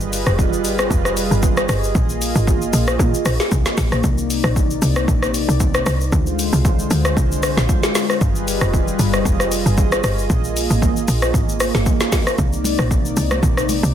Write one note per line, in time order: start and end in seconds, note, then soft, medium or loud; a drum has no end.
0.00 0.24 G1 loud
0.00 1.93 G3 medium
0.00 1.93 F4 medium
0.00 4.00 G#4 medium
0.00 1.93 B4 medium
0.00 4.00 D#5 medium
0.00 shaker soft
0.13 open hi-hat medium
0.13 shaker medium
0.27 0.66 F1 loud
0.27 cross-stick medium
0.27 shaker medium
0.39 kick loud
0.39 shaker medium
0.53 shaker soft
0.65 0.89 G1 loud
0.65 open hi-hat medium
0.65 shaker medium
0.79 cross-stick loud
0.79 shaker medium
0.91 1.29 F1 loud
0.91 kick loud
0.91 shaker medium
1.05 cross-stick medium
1.05 shaker medium
1.17 open hi-hat medium
1.17 shaker loud
1.31 1.67 G1 medium
1.31 shaker soft
1.43 kick loud
1.43 shaker medium
1.57 cross-stick loud
1.57 shaker soft
1.69 1.93 G1 medium
1.69 cross-stick loud
1.69 open hi-hat medium
1.69 shaker medium
1.84 shaker soft
1.95 2.33 A#1 loud
1.95 6.09 A#3 medium
1.95 4.02 F4 medium
1.95 kick loud
1.95 shaker medium
2.09 shaker soft
2.22 open hi-hat medium
2.22 shaker medium
2.35 2.71 G#1 loud
2.35 shaker medium
2.47 kick loud
2.47 shaker medium
2.62 shaker soft
2.73 2.98 A#1 loud
2.73 open hi-hat medium
2.73 shaker medium
2.88 cross-stick loud
2.88 shaker medium
2.99 3.13 A#2 loud
2.99 kick loud
2.99 shaker medium
3.14 shaker medium
3.25 3.39 A#1 medium
3.25 cross-stick loud
3.25 open hi-hat medium
3.25 shaker medium
3.40 snare medium
3.40 shaker medium
3.52 3.65 C2 loud
3.52 kick loud
3.52 shaker medium
3.66 snare medium
3.66 shaker medium
3.78 3.91 A#1 loud
3.78 kick loud
3.78 snare medium
3.78 open hi-hat medium
3.78 shaker medium
3.92 4.03 A#1 medium
3.92 cross-stick medium
3.92 shaker soft
4.04 4.42 C2 loud
4.04 6.10 C3 medium
4.04 6.11 D#4 medium
4.04 6.10 D5 medium
4.04 kick loud
4.04 shaker medium
4.18 shaker soft
4.30 open hi-hat medium
4.30 shaker medium
4.44 4.80 A#1 loud
4.44 cross-stick medium
4.44 shaker medium
4.56 kick loud
4.56 shaker medium
4.70 shaker soft
4.82 5.06 C2 loud
4.82 open hi-hat medium
4.82 shaker medium
4.96 cross-stick loud
4.96 shaker medium
5.08 5.46 A#1 loud
5.08 kick loud
5.08 shaker medium
5.23 cross-stick medium
5.23 shaker medium
5.34 open hi-hat medium
5.34 shaker medium
5.49 5.84 C2 loud
5.49 shaker soft
5.60 kick loud
5.60 shaker medium
5.74 cross-stick loud
5.74 shaker medium
5.86 6.11 C2 loud
5.86 cross-stick loud
5.86 open hi-hat medium
5.86 shaker medium
6.01 shaker soft
6.12 6.50 D2 loud
6.12 8.19 D3 medium
6.12 8.19 G#3 medium
6.12 12.34 F4 medium
6.12 8.19 C5 medium
6.12 kick loud
6.12 shaker medium
6.27 shaker soft
6.39 open hi-hat medium
6.39 shaker medium
6.53 6.88 C2 medium
6.53 shaker medium
6.65 kick loud
6.65 shaker medium
6.79 shaker soft
6.91 7.15 D2 loud
6.91 open hi-hat medium
6.91 shaker medium
7.05 cross-stick loud
7.05 shaker medium
7.17 7.55 C2 medium
7.17 kick loud
7.17 shaker medium
7.32 shaker medium
7.43 cross-stick loud
7.43 open hi-hat medium
7.43 shaker loud
7.57 7.68 A#1 medium
7.57 snare medium
7.57 shaker medium
7.69 kick loud
7.69 shaker medium
7.83 snare medium
7.83 shaker medium
7.95 snare medium
7.95 open hi-hat medium
7.95 shaker medium
8.10 cross-stick medium
8.10 shaker soft
8.21 8.59 G1 loud
8.21 10.28 G3 medium
8.21 12.35 G#4 medium
8.21 10.28 B4 medium
8.21 12.35 D#5 medium
8.21 kick loud
8.21 shaker medium
8.36 shaker soft
8.48 open hi-hat medium
8.48 shaker medium
8.61 8.97 F1 medium
8.61 cross-stick medium
8.61 shaker medium
8.74 kick loud
8.74 shaker medium
8.88 shaker soft
8.99 9.24 G1 loud
8.99 open hi-hat medium
8.99 shaker medium
9.14 cross-stick loud
9.14 shaker medium
9.25 9.63 F1 loud
9.25 kick loud
9.25 shaker medium
9.40 cross-stick medium
9.40 shaker medium
9.52 open hi-hat medium
9.52 shaker loud
9.66 10.01 G1 medium
9.66 shaker medium
9.78 kick loud
9.78 shaker medium
9.92 cross-stick loud
9.92 shaker soft
10.04 10.28 G1 medium
10.04 cross-stick loud
10.04 open hi-hat medium
10.04 shaker medium
10.18 shaker soft
10.30 10.68 A#1 loud
10.30 13.94 A#3 medium
10.30 kick loud
10.30 shaker medium
10.44 shaker medium
10.57 open hi-hat medium
10.57 shaker medium
10.70 11.06 G#1 medium
10.70 shaker medium
10.82 kick loud
10.82 shaker medium
10.97 shaker soft
11.08 11.33 A#1 loud
11.08 open hi-hat medium
11.08 shaker medium
11.22 cross-stick loud
11.22 shaker medium
11.34 11.72 G#1 medium
11.34 kick loud
11.34 shaker medium
11.49 shaker medium
11.60 cross-stick loud
11.60 open hi-hat medium
11.60 shaker loud
11.75 11.86 G1 medium
11.75 snare medium
11.75 shaker soft
11.86 kick loud
11.86 shaker medium
12.00 snare medium
12.00 shaker medium
12.12 kick loud
12.12 snare medium
12.12 open hi-hat medium
12.12 shaker medium
12.27 cross-stick medium
12.27 shaker soft
12.38 12.76 C2 loud
12.38 13.94 C3 medium
12.38 13.94 D#4 medium
12.38 13.94 D5 loud
12.38 kick loud
12.38 low conga medium
12.38 shaker medium
12.53 shaker soft
12.64 open hi-hat medium
12.64 high conga medium
12.64 shaker loud
12.79 13.14 A#1 loud
12.79 cross-stick medium
12.79 shaker medium
12.91 kick loud
12.91 shaker medium
13.05 shaker soft
13.17 13.41 C2 loud
13.17 open hi-hat medium
13.17 high conga medium
13.17 shaker medium
13.31 cross-stick loud
13.31 high conga medium
13.31 shaker medium
13.43 13.81 A#1 loud
13.43 kick loud
13.43 low conga medium
13.43 shaker medium
13.57 cross-stick medium
13.57 shaker medium
13.69 open hi-hat medium
13.69 high conga medium
13.69 shaker loud
13.83 13.94 C2 loud
13.83 high conga medium
13.83 shaker soft